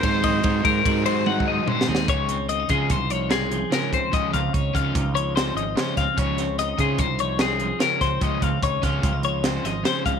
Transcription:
<<
  \new Staff \with { instrumentName = "Clean electric guitar" } { \time 5/4 \key des \major \tempo 4 = 147 c''8 ees''4 bes'4 c''8 ges''8 ees''8 c''8 aes'8 | des''4 ees''8 aes'8 c''8 des''8 aes'4 bes'8 c''8 | ees''8 f''8 des''8 f''4 des''8 c''8 ees''8 c''8 f''8 | des''4 ees''8 aes'8 c''8 des''8 aes'4 bes'8 c''8 |
ees''8 f''8 des''8 f''4 des''8 c''8 ees''8 c''8 f''8 | }
  \new Staff \with { instrumentName = "Trumpet" } { \time 5/4 \key des \major c''1 r4 | r1 r4 | r1 r4 | r1 r4 |
r1 r4 | }
  \new Staff \with { instrumentName = "Clean electric guitar" } { \time 5/4 \key des \major << { ees'8 c'8 ees'4 ges'8 c'8 ees'4 c'16 ees'16 c'8 | r8 c'8 c'16 ees'16 f'8 ees'4 c'4. c'8 | r8 c'8 ees'8 f'8 ees'4 c'4. c'8 | r8 c'8 ees'8 f'8 ees'4 c'4. c'8 |
r8 c'8 ees'8 f'8 c'16 ees'8. c'4. c'8 | } \\ { <aes, ees>4 ees4. aes,4. aes,4 | des2~ des8 f4 f8 des4 | des2~ des8 f4 f8 des4 | des2~ des8 f4 f8 des4 |
des2~ des8 f4 f8 des4 | } >> }
  \new Staff \with { instrumentName = "Overdriven electric guitar" } { \clef bass \time 5/4 \key des \major <aes, ees ges c' ees'>8 <ges c' ees'>8 <aes, ees ges c' ees'>8 <ges c' ees'>8 <ees ges c' ees'>8 <aes, ees ges c' ees'>8 <ees ges c' ees'>8 <ges c' ees'>8 <aes, ees ges c' ees'>8 <ges c' ees'>8 | <des f aes des'>8 r4 <des f aes des'>8 r4 <des f aes des'>8 r8 <des f aes des'>8 r8 | <des f aes des'>8 r4 <des f aes des'>8 r4 <des f aes des'>8 r8 <des f aes des'>8 r8 | <des f aes des'>8 r4 <des f aes des'>8 r4 <des f aes des'>8 r8 <des f aes des'>8 r8 |
<des f aes des'>8 r4 <des f aes des'>8 r4 <des f aes des'>8 r8 <des f aes des'>8 r8 | }
  \new Staff \with { instrumentName = "Fingered electric bass" } { \clef bass \time 5/4 \key des \major aes,4 aes,8 aes,8 aes,2 r8 ees,8 | des,4. des8 c,2 r8 des,8 | des,8 des,8 des,8 des,8 des,4. aes,,8 r8 des,16 r16 | des,4. des8 c,2 r8 des,8 |
des,8 des,8 des,8 des,8 des,4. aes,,8 r8 des,8 | }
  \new DrumStaff \with { instrumentName = "Drums" } \drummode { \time 5/4 <bd cymr>8 <bd cymr>8 <bd cymr>8 <bd cymr>8 <bd cymr>8 cymr8 \tuplet 3/2 { tommh8 bd8 r8 toml8 sn8 sn8 } | <hh bd>8 hh8 hh8 <hh bd>8 <hh bd>8 hh8 <hh sn>8 hh8 <hh sn>8 <hh bd>8 | <hh bd>8 <hh bd>8 <hh bd>8 <hh bd>8 <hh bd>8 hh8 <hh sn>8 hh8 <hh sn>8 <hh bd sn>8 | <hh bd>8 <hh sn>8 <hh sn>8 <hh bd>8 <hh bd>8 hh8 <hh sn>8 hh8 <hh sn>8 <hh bd sn>8 |
<hh bd>8 <hh bd>8 <hh bd>8 <hh bd sn>8 <hh bd>8 hh8 <hh sn>8 <hh sn>8 <hh sn>8 <hh bd>8 | }
>>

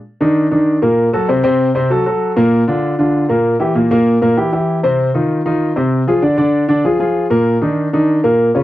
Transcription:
\new Staff \with { instrumentName = "Grand piano" } { \time 4/4 \key g \phrygian \tempo 4 = 194 r8 <ees d' ees'>4 <ees d' ees'>4 <bes, bes bes'>4 <ges ges' a'>8 | <c c' c''>8 <c c' c''>4 <c c' c''>8 <fis fis' a'>8 <fis fis' a'>4 <bes, bes bes'>8~ | <bes, bes bes'>8 <d d' f'>4 <d d' f'>4 <bes, bes bes'>4 <fes fes' g'>8 | <bes, bes bes'>8 <bes, bes bes'>4 <bes, bes bes'>8 <e e' g'>8 <e e' g'>4 <c c' c''>8~ |
<c c' c''>8 <ees ees' f'>4 <ees ees' f'>4 <c c' c''>4 <f f' aes'>8 | <d d' d''>8 <d d' d''>4 <d d' d''>8 <f f' aes'>8 <f f' aes'>4 <bes, bes bes'>8~ | <bes, bes bes'>8 <ees d' ees'>4 <ees d' ees'>4 <bes, bes bes'>4 <des des' f'>8 | }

